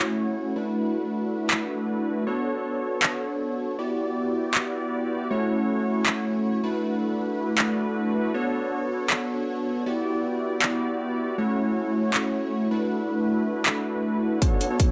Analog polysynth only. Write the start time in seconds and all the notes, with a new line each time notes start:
Already playing: A3 C#4 E4 F#4 C#5
0.56 A3 D4 E4 F#4 B4
2.27 B3 D4 F#4 A4 C#5
3.79 B3 E4 F#4 G4 D5
5.31 A3 C#4 E4 F#4 C#5
6.63 A3 D4 E4 F#4 B4
8.34 B3 D4 F#4 A4 C#5
9.86 B3 E4 F#4 G4 D5
11.38 A3 C#4 E4 F#4 C#5
12.71 A3 D4 E4 F#4 B4
14.42 B3 D4 F#4 A4 C#5
14.70 B3 D4 F#4 A4 C#5